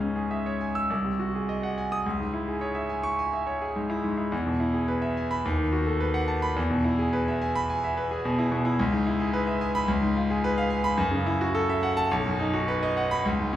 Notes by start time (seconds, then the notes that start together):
Already playing: C#2 G#2
0.01 C#4
0.16 G#4
0.31 E5
0.46 C#5
0.61 G#5
0.75 E6
0.90 C2
1.05 C3
1.19 F#4
1.35 G#4
1.49 D#5
1.63 F#5
1.78 G#5
1.92 D#6
2.06 C#2
2.20 G#2
2.34 E4
2.48 G#4
2.61 C#5
2.75 E5
2.89 G#5
3.03 C#6
3.19 G#5
3.33 E5
3.47 C#5
3.62 G#4
3.76 G#2
3.90 E4
4.04 G#2
4.18 E4
4.32 E2
4.46 B2
4.60 E4
4.74 G#4
4.88 B4
5.02 E5
5.17 G#5
5.31 B5
5.45 D#2
5.58 D#3
5.72 F#4
5.87 A4
6.00 B4
6.14 F#5
6.28 A5
6.42 B5
6.56 E2
6.70 B2
6.84 E4
6.98 G#4
7.13 B4
7.28 E5
7.41 G#5
7.55 B5
7.70 G#5
7.84 E5
7.97 B4
8.11 G#4
8.25 B2
8.39 E4
8.52 B2
8.65 E4
8.79 C#2
8.93 G#2
9.07 E4
9.20 G#4
9.33 B4
9.47 E5
9.61 G#5
9.75 B5
9.88 C#2
10.02 G#2
10.16 F4
10.30 G#4
10.44 B4
10.58 F5
10.70 G#5
10.84 B5
10.97 F#2
11.11 C#3
11.26 E4
11.41 F#4
11.55 A4
11.69 E5
11.83 F#5
11.97 A5
12.11 B1
12.26 F#2
12.39 D#4
12.54 F#4
12.68 B4
12.83 D#5
12.97 F#5
13.11 B5
13.25 C#2
13.39 G#2
13.53 C#4